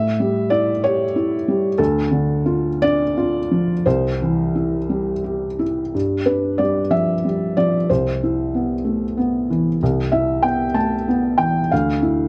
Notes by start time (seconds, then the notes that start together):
Already playing: A2 E5
0.20 G3
0.50 E4 D5
0.84 G4 C#5
1.16 E4
1.48 G3
1.78 D2 A4
2.11 D3
2.46 F4
2.82 D4 D5
3.17 F4
3.51 F3
3.86 C2 C5
4.22 E3
4.55 E4
4.89 G3
5.24 G4
5.59 E4
5.95 G2
6.26 D4 B4
6.58 G3 D5
6.90 F3 E5
7.25 G3
7.57 F3 D5
7.90 C2 C5
8.23 E4
8.54 B3
8.85 A3
9.17 B3
9.50 E3
9.83 C2
10.12 E4 E5
10.43 B3 G5
10.74 A3 A5
11.08 B3
11.38 E3 G5
11.72 D2 F5
12.02 E4